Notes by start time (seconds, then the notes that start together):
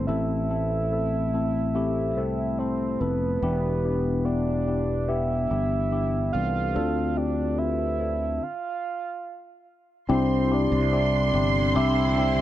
Already playing: A3 C4 E4 A4 B4 C5
0.07 A1 A2 A3 C4 E4 A4 E5
0.50 A3 C4 E4 A4
0.92 A3 C4 E4 A4
1.34 A3 C4 E4 A4
1.75 A3 C4 E4 G4
2.17 C2 A3 C4 E4 A4
2.59 A3 C4 E4 A4 C5
3.00 F1 A3 C4 E4 A4 B4
3.42 E1 E3 B3 D4 E4 G4
3.84 B3 D4 E4 G4
4.25 B3 D4 E4 G4 D5
4.67 B3 D4 E4 G4
5.08 B3 D4 E4 G4 E5
5.50 G1 B3 D4 E4 G4
5.91 B3 D4 E4 G4
6.33 C2 E3 B3 D4 A4 F5
6.75 D2 D3 C4 D4 F4 A4
7.16 C4 D4 F4 G4 D5
7.58 C4 D4 F4 B4 E5
8.00 C4 D4 F4 A4
8.43 F5
10.09 C2 C3 D3 C4 D4 E4 G4 C5 C6
10.51 C4 D4 E4 G4 D5
10.72 C2
10.93 C4 D4 E4 G4
11.34 G1 C4 D4 E4 G4
11.75 C2 C4 D4 E4 G4 E5
12.18 C4 D4 E4 G4